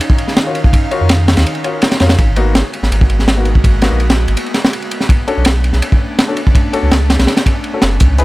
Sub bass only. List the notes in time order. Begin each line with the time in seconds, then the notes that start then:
1.01 F2
1.37 D#2
2.00 F2
2.19 G#1
2.82 G#1
2.91 G#1
3.91 A#1
4.28 G#1
5.37 B1
5.73 B1
6.82 C#2
7.19 B1
7.82 F#1
8.01 C#2